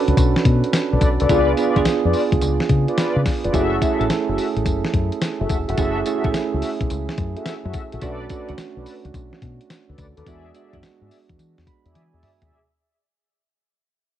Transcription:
Already playing: synth keys C#4 D4 F#4 A4 B4
0.08 fingered electric bass C#2, closed hi-hat
0.17 fingered electric bass B1, kick, closed hi-hat, tambourine
0.36 snare
0.45 fingered electric bass B2, kick, closed hi-hat
0.64 closed hi-hat
0.73 snare, closed hi-hat, tambourine
0.92 fingered electric bass B1, analog polysynth A4 B4 D5
1.01 fingered electric bass B1, kick, closed hi-hat, tambourine
1.20 fingered electric bass C2, analog polysynth A4 B4 D5, closed hi-hat
1.29 fingered electric bass C#2, synth keys B3 D4 F4 G#4, analog polysynth F4 B4 D5, kick, closed hi-hat, tambourine
1.57 synth keys B3 D4 F4 G#4, analog polysynth F4 B4 D5, closed hi-hat, tambourine
1.76 fingered electric bass C#2, synth keys B3 D4 F4 G#4, kick, closed hi-hat
1.85 muted fingered electric bass stroke, snare, closed hi-hat, tambourine
2.04 fingered electric bass F2, analog polysynth F4 B4 D5
2.13 open hi-hat, tambourine
2.32 fingered electric bass C#2, kick, closed hi-hat
2.41 fingered electric bass C#2, closed hi-hat, tambourine
2.60 snare
2.69 fingered electric bass C#3, kick, closed hi-hat
2.88 analog polysynth F4 B4 D5, closed hi-hat
2.97 analog polysynth F4 B4 D5, snare, closed hi-hat, tambourine
3.16 fingered electric bass C#3
3.26 kick, snare, open hi-hat, tambourine
3.44 fingered electric bass F1, analog polysynth F4 B4 D5, closed hi-hat
3.53 fingered electric bass F#1, synth keys A3 C#4 E4 G#4, analog polysynth F#4 A4 E5, kick, closed hi-hat, tambourine
3.81 synth keys A3 C#4 E4 G#4, analog polysynth F#4 A4 E5, kick, closed hi-hat, tambourine
3.99 fingered electric bass A1, synth keys A3 C#4 E4 A4, closed hi-hat
4.10 snare, closed hi-hat, tambourine
4.28 fingered electric bass F#1, analog polysynth F#4 A4 E5
4.38 open hi-hat, tambourine
4.57 fingered electric bass A1, closed hi-hat
4.66 fingered electric bass F#1, kick, closed hi-hat, tambourine
4.85 snare
4.94 fingered electric bass F#2, kick, closed hi-hat
5.12 closed hi-hat
5.22 snare, closed hi-hat, tambourine
5.40 fingered electric bass F#1, analog polysynth F#4 A4 E5
5.50 fingered electric bass E1, kick, closed hi-hat, tambourine
5.68 fingered electric bass F1, analog polysynth F#4 A4 E5, closed hi-hat
5.77 fingered electric bass F#1, synth keys A3 C#4 E4 G#4, analog polysynth F#4 A4 E5, kick, closed hi-hat, tambourine
6.06 synth keys A3 C#4 E4 G#4, analog polysynth F#4 A4 E5, closed hi-hat, tambourine
6.24 fingered electric bass A1, synth keys A3 C#4 E4 G#4, kick, closed hi-hat
6.34 snare, closed hi-hat, tambourine
6.53 fingered electric bass C#2, analog polysynth F#4 A4 E5
6.62 open hi-hat, tambourine
6.81 fingered electric bass B1, kick, closed hi-hat
6.90 fingered electric bass C#2, closed hi-hat, tambourine
7.09 snare
7.18 fingered electric bass F#2, kick, closed hi-hat
7.36 analog polysynth F#4 A4 E5, closed hi-hat
7.46 snare, closed hi-hat, tambourine
7.64 fingered electric bass F#2, analog polysynth F#4 A4 E5
7.74 kick, closed hi-hat, tambourine
7.92 fingered electric bass A#1, analog polysynth F#4 A4 E5, closed hi-hat
8.01 fingered electric bass B1, synth keys A3 C#4 D4 F#4, analog polysynth A4 B4 D5, kick, closed hi-hat, tambourine
8.29 synth keys A3 C#4 D4 F#4, analog polysynth A4 B4 D5, kick, closed hi-hat, tambourine
8.48 fingered electric bass C#2, synth keys A3 C#4 D4 F#4, closed hi-hat
8.58 snare, closed hi-hat, tambourine
8.77 fingered electric bass B1, analog polysynth A4 B4 D5
8.86 open hi-hat, tambourine
9.05 fingered electric bass C#2, closed hi-hat
9.14 fingered electric bass B1, kick, closed hi-hat, tambourine
9.33 snare
9.42 fingered electric bass B2, kick, closed hi-hat
9.61 closed hi-hat
9.70 snare, closed hi-hat, tambourine
9.89 fingered electric bass D2, analog polysynth A4 B4 D5
9.98 fingered electric bass D2, kick, closed hi-hat, tambourine
10.17 fingered electric bass D#2, analog polysynth A4 B4 D5, closed hi-hat
10.26 fingered electric bass E2, synth keys G#3 B3 D4 F#4, analog polysynth G#4 D5 E5, kick, closed hi-hat, tambourine
10.54 synth keys G#3 B3 D4 F#4, analog polysynth G#4 D5 E5, closed hi-hat, tambourine
10.73 fingered electric bass F#2, synth keys G#3 B3 D4 F#4, kick, closed hi-hat
10.83 muted fingered electric bass stroke, snare, closed hi-hat, tambourine
11.01 fingered electric bass G#2, analog polysynth G#4 D5 E5
11.11 open hi-hat, tambourine
11.29 fingered electric bass E2, kick, closed hi-hat
11.39 fingered electric bass E3, closed hi-hat, tambourine
11.58 fingered electric bass E2, snare
11.67 synth keys B5, kick, closed hi-hat
11.85 fingered electric bass E2, analog polysynth G#4 D5 E5, closed hi-hat
11.95 fingered electric bass E3, synth keys G#5, closed hi-hat, high tom
12.13 fingered electric bass E2, analog polysynth G#4 D5 E5
12.23 synth keys E5, mid tom, open hi-hat
12.41 fingered electric bass D#2, analog polysynth G#4 D5 E5, closed hi-hat, floor tom

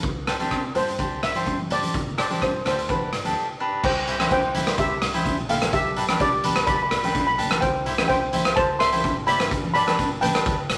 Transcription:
0.03 fingered electric bass C2, kick, closed hi-hat
0.27 cavaquinho D4 G4 C5, cross-stick, closed hi-hat
0.39 fingered electric bass C3, cavaquinho D4 G4 C5, closed hi-hat, high conga
0.51 kick, cross-stick, closed hi-hat
0.75 fingered electric bass G2, cavaquinho D4 G4 C5, steel pan C5, closed hi-hat, low conga
0.88 closed hi-hat
0.99 cavaquinho D4 G4 C5, kick, closed hi-hat, high conga
1.11 fingered electric bass C2
1.23 steel pan E5, cross-stick, closed hi-hat
1.35 fingered electric bass G2, cavaquinho D4 G4 C5, closed hi-hat, high conga
1.46 kick, closed hi-hat
1.59 high conga
1.70 cavaquinho D4 G4 C5, steel pan D5, closed hi-hat, low conga
1.83 closed hi-hat, high conga
1.94 fingered electric bass G1, kick, closed hi-hat
2.07 low conga
2.18 cavaquinho D4 G4 C5, steel pan D5, cross-stick, closed hi-hat
2.29 fingered electric bass G2, cavaquinho D4 G4 C5, closed hi-hat, high conga
2.42 steel pan C5, kick, cross-stick, closed hi-hat
2.65 fingered electric bass D2, cavaquinho D4 G4 C5, steel pan C5, cross-stick, closed hi-hat, low conga
2.79 closed hi-hat
2.89 fingered electric bass G1, cavaquinho D4 G4 B4, steel pan B4, kick, closed hi-hat, high conga
3.01 fingered electric bass G1
3.13 cross-stick, closed hi-hat
3.25 fingered electric bass D2, cavaquinho D4 G4 A4, closed hi-hat, high conga
3.60 cavaquinho D4 G4 B4
3.83 fingered electric bass C2, steel pan C5 G5, kick, crash
4.08 cavaquinho E4 G4 C5, closed hi-hat
4.20 cavaquinho E4 G4 C5, cross-stick, closed hi-hat, high conga
4.31 fingered electric bass C2, steel pan C5 G5, kick, closed hi-hat
4.55 cavaquinho E4 G4 C5, closed hi-hat, high conga, low conga
4.67 fingered electric bass C2, cross-stick, closed hi-hat
4.78 steel pan G4 E5, kick, closed hi-hat
5.01 fingered electric bass C2, cross-stick, closed hi-hat
5.14 cavaquinho E4 G4 C5, closed hi-hat, high conga
5.26 kick, closed hi-hat
5.37 fingered electric bass A#1
5.49 cavaquinho E4 G4 A4, steel pan A4 F5, closed hi-hat, low conga
5.62 cross-stick, closed hi-hat, high conga
5.73 fingered electric bass B1, steel pan G4 E5, kick, closed hi-hat
5.96 cavaquinho D4 G4 B4, closed hi-hat
6.09 cavaquinho D4 G4 B4, cross-stick, closed hi-hat, high conga
6.20 fingered electric bass B1, steel pan G4 D5, kick, closed hi-hat
6.44 cavaquinho D4 G4 B4, closed hi-hat, high conga, low conga
6.56 fingered electric bass B1, cross-stick, closed hi-hat
6.67 steel pan D5 B5, kick, closed hi-hat
6.76 steel pan B5
6.83 steel pan B5
6.89 fingered electric bass B1, steel pan B5, cross-stick, closed hi-hat
6.97 steel pan B5
7.04 cavaquinho D4 G4 B4, steel pan B5, closed hi-hat, high conga
7.13 steel pan B5, kick, closed hi-hat
7.20 steel pan B5
7.27 fingered electric bass B1, steel pan B5
7.38 cavaquinho D4 G4 B4, closed hi-hat, low conga
7.51 cross-stick, closed hi-hat, high conga
7.61 fingered electric bass C2, steel pan C5 G5, kick, closed hi-hat
7.86 cavaquinho E4 G4 C5, closed hi-hat
7.98 cavaquinho E4 G4 C5, cross-stick, closed hi-hat, high conga
8.08 fingered electric bass C2, steel pan C5 G5, kick, closed hi-hat
8.33 cavaquinho E4 G4 C5, closed hi-hat, high conga, low conga
8.45 fingered electric bass C2, cross-stick, closed hi-hat
8.56 steel pan C5 A5, kick, closed hi-hat
8.79 fingered electric bass C2, steel pan E5 C6, cross-stick, closed hi-hat
8.92 cavaquinho E4 G4 C5, closed hi-hat, high conga
9.04 kick, closed hi-hat
9.16 fingered electric bass G#1
9.27 cavaquinho E4 G4 C5, steel pan D5 B5, closed hi-hat, low conga
9.40 cross-stick, closed hi-hat, high conga
9.51 fingered electric bass G1, kick, closed hi-hat
9.64 high conga
9.74 cavaquinho D4 G4 B4, steel pan D5 B5, closed hi-hat
9.87 cavaquinho D4 G4 B4, cross-stick, closed hi-hat, high conga
9.99 fingered electric bass G1, kick, closed hi-hat
10.21 cavaquinho D4 G4 B4, steel pan B4 G5, closed hi-hat, high conga, low conga
10.34 fingered electric bass G1, cross-stick, closed hi-hat
10.46 kick, closed hi-hat
10.69 fingered electric bass G1, cross-stick, closed hi-hat

